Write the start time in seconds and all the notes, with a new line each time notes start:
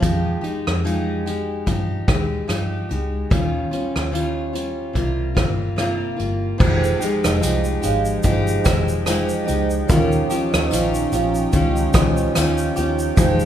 0.00 F2 F3 G#3 D#4 G4, kick, closed hi-hat
0.41 D#4 G4, closed hi-hat
0.45 G#3
0.67 F2, cross-stick
0.84 F3 G#3 D#4 G4, closed hi-hat
1.26 G#3 D#4 G4, closed hi-hat
1.66 G2 F3 D#4 G4, kick, closed hi-hat
2.08 D#2 G#3 D#4 G4, kick, cross-stick, closed hi-hat
2.48 G2 F3 D#4 G4, cross-stick, closed hi-hat
2.89 C#2 G#3 D#4 G4, closed hi-hat
3.30 D#2 D#3 G3 C#4 F4, kick, closed hi-hat
3.71 G3 C#4 F4, closed hi-hat
3.96 D#2, cross-stick
4.12 D#3 G3 C#4 F4, closed hi-hat
4.53 G3 C#4 F4, closed hi-hat
4.93 C2 C3 G3 A#3 F4, kick, closed hi-hat
5.35 G1 G3 A#3 F4, kick, cross-stick, closed hi-hat
5.76 C3 G3 A#3 F4, cross-stick, closed hi-hat
6.16 G1 G3 A#3 F4, closed hi-hat
6.58 F1 F3 G#3 D#4 G4 G#4 C5 G5, kick, crash
6.84 shaker
6.99 G#3 D#4 G4, closed hi-hat, shaker
7.24 F1 C5 D#5, cross-stick, shaker
7.40 C2 F3 G#3 D#4 G4, closed hi-hat, tambourine, shaker
7.64 shaker
7.82 G#1 G#3 D#4 G4 C#5 F5, closed hi-hat, shaker
8.05 shaker
8.23 G1 F3 G#3 D#4 G4 C5 D#5, kick, closed hi-hat, shaker
8.48 shaker
8.64 F1 G#3 D#4 G4 G#4 C5, kick, cross-stick, closed hi-hat, shaker
8.88 shaker
9.06 F3 G#3 D#4 G4 G#4 C5, cross-stick, closed hi-hat, tambourine, shaker
9.29 shaker
9.45 C#2 D#4 G4 C5 D#5, closed hi-hat, shaker
9.50 G#3
9.70 shaker
9.88 D#2 D#3 F3 C#4 F4 G4 A#4 C#5, kick, closed hi-hat, shaker
10.12 shaker
10.30 C#4 F4 G4, closed hi-hat, shaker
10.52 D#2 C5 D#5, cross-stick, shaker
10.71 A#1 D#3 C#4 F4 G4, closed hi-hat, tambourine, shaker
10.95 shaker
11.12 A#1 C#4 F4 G4 C#5 F5, closed hi-hat, shaker
11.35 shaker
11.53 C#2 D#3 C#4 F4 G4, kick, closed hi-hat, shaker
11.76 shaker
11.94 C#2 C#4 F4 G4 C5 D#5, kick, cross-stick, closed hi-hat, shaker
12.17 shaker
12.35 D#2 D#3 C#4 F4 G4, cross-stick, closed hi-hat, tambourine, shaker
12.58 shaker
12.76 D#2 C#4 F4 G4, closed hi-hat, shaker
12.99 shaker
13.16 F1 F3 G#3 D#4 G4 G#4 C5, kick, closed hi-hat, shaker
13.40 shaker